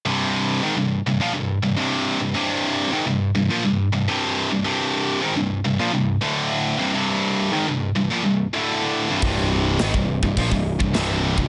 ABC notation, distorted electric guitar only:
X:1
M:4/4
L:1/16
Q:1/4=105
K:Cm
V:1 name="Distorted electric guitar" clef=bass
[C,,G,,C,]4 [A,,E,] [C,,G,,]2 [C,,G,,] [B,,F,] [C,,G,,]2 [C,,G,,] [C,,G,,C,]3 [C,,G,,] | [C,,G,,C,]4 [A,,E,] [C,,G,,]2 [C,,G,,] [B,,F,] [C,,G,,]2 [C,,G,,] [C,,G,,C,]3 [C,,G,,] | [C,,G,,C,]4 [A,,E,] [C,,G,,]2 [C,,G,,] [B,,F,] [C,,G,,]2 [D,,=A,,D,]4 [C,,G,,] | [C,,G,,C,]4 [A,,E,] [C,,G,,]2 [C,,G,,] [B,,F,] [C,,G,,]2 [D,,=A,,D,]4 [C,,G,,] |
[C,,G,,C,]4 [A,,E,] [C,,G,,]2 [C,,G,,] [B,,F,] [C,,G,,]2 [C,,G,,] [C,,G,,C,]3 [C,,G,,] |]